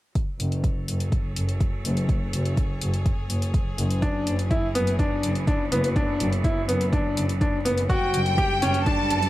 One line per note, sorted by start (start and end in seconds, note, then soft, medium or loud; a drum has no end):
0.15 4.03 F#3 medium
0.15 kick medium
0.15 closed hi-hat soft
0.39 0.59 F#1 medium
0.39 closed hi-hat medium
0.48 5.57 C#5 medium
0.52 closed hi-hat soft
0.57 4.03 A4 medium
0.64 kick medium
0.64 closed hi-hat soft
0.88 1.08 F#1 medium
0.88 7.90 G#4 medium
0.88 closed hi-hat medium
1.00 closed hi-hat soft
1.12 kick medium
1.12 closed hi-hat soft
1.36 1.56 F#1 medium
1.36 closed hi-hat medium
1.49 closed hi-hat soft
1.60 kick medium
1.60 closed hi-hat soft
1.85 2.05 F#1 medium
1.85 closed hi-hat medium
1.97 closed hi-hat soft
2.09 kick medium
2.09 closed hi-hat soft
2.33 2.53 F#1 medium
2.33 closed hi-hat medium
2.45 closed hi-hat soft
2.57 kick medium
2.57 closed hi-hat soft
2.81 3.01 F#1 medium
2.81 closed hi-hat medium
2.94 closed hi-hat soft
3.06 kick medium
3.06 closed hi-hat soft
3.30 3.50 F#1 medium
3.30 closed hi-hat medium
3.42 closed hi-hat soft
3.54 kick medium
3.54 closed hi-hat soft
3.78 3.98 F#1 loud
3.78 closed hi-hat medium
3.91 closed hi-hat soft
4.02 7.90 E3 medium
4.02 4.31 D4 medium
4.02 kick medium
4.02 closed hi-hat soft
4.14 9.21 F#3 medium
4.27 4.47 F#1 medium
4.27 closed hi-hat medium
4.35 8.80 B3 medium
4.35 closed hi-hat soft
4.51 4.65 E4 medium
4.51 kick loud
4.51 closed hi-hat soft
4.75 4.95 F#1 medium
4.75 4.90 B3 medium
4.75 closed hi-hat medium
4.87 closed hi-hat soft
4.99 5.28 D4 medium
4.99 kick medium
4.99 closed hi-hat soft
5.23 5.43 F#1 medium
5.23 closed hi-hat medium
5.35 closed hi-hat soft
5.47 5.62 D4 medium
5.47 kick loud
5.47 closed hi-hat soft
5.72 5.92 F#1 medium
5.72 5.86 B3 medium
5.72 closed hi-hat medium
5.84 closed hi-hat soft
5.96 6.25 D4 medium
5.96 kick medium
5.96 closed hi-hat soft
6.20 6.40 F#1 medium
6.20 closed hi-hat medium
6.33 closed hi-hat soft
6.44 6.59 E4 medium
6.44 kick medium
6.44 closed hi-hat soft
6.68 6.88 F#1 medium
6.68 6.83 B3 medium
6.68 closed hi-hat medium
6.81 closed hi-hat soft
6.93 7.22 D4 medium
6.93 kick loud
6.93 closed hi-hat soft
7.17 7.37 F#1 medium
7.17 closed hi-hat medium
7.29 closed hi-hat soft
7.41 7.56 D4 medium
7.41 kick loud
7.41 closed hi-hat soft
7.65 7.85 F#1 medium
7.65 7.80 B3 medium
7.65 closed hi-hat medium
7.78 closed hi-hat soft
7.89 9.29 G3 medium
7.89 8.19 F#4 medium
7.89 8.82 G5 loud
7.89 kick medium
7.89 closed hi-hat soft
8.09 9.29 D4 medium
8.14 8.34 F#1 medium
8.14 closed hi-hat medium
8.24 9.29 A4 medium
8.24 closed hi-hat soft
8.38 8.53 G4 medium
8.38 kick medium
8.38 closed hi-hat soft
8.62 8.82 F#1 medium
8.62 8.77 C#4 medium
8.62 closed hi-hat medium
8.67 9.29 B4 medium
8.74 closed hi-hat soft
8.86 9.16 D4 medium
8.86 9.29 A5 loud
8.86 kick medium
8.86 closed hi-hat soft
9.10 9.29 F#1 medium
9.10 closed hi-hat medium
9.23 closed hi-hat soft